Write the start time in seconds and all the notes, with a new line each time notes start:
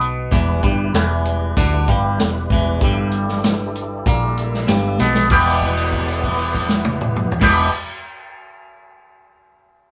Already playing: B1 B2 B3
0.01 closed hi-hat
0.31 E1 E2 E3 G3 E4 G4 B4, kick, closed hi-hat
0.63 G1 G2 G3, kick, closed hi-hat
0.94 E1 E2 E3, snare, closed hi-hat
1.25 closed hi-hat
1.57 D2 D3 D4, kick, closed hi-hat
1.88 G1 G2 G3, kick, closed hi-hat
2.20 E1 E2, snare, closed hi-hat
2.50 E1 E2 E3, kick, closed hi-hat
2.81 G1 G2 G3 A4, kick, closed hi-hat
3.11 closed hi-hat
3.28 snare
3.44 snare, closed hi-hat
3.75 closed hi-hat
4.06 A#1 A#2 A#3, kick, closed hi-hat
4.37 closed hi-hat
4.54 snare
4.67 G1 G2 G3, snare, closed hi-hat
4.98 B1 B2 B3, snare
5.15 snare
5.29 E1 E2 B2 E3 G3 B3 E4 B4, kick, crash
5.33 G4
5.61 kick, crash
5.77 crash
5.92 kick, crash
6.08 crash
6.24 kick, crash
6.39 crash
6.55 kick, crash
6.69 snare
6.85 high tom
7.01 mid tom
7.16 mid tom
7.32 floor tom
7.40 E1 E2 B2 E3 G3 B3 E4 G4 B4, kick, snare, crash
7.44 G4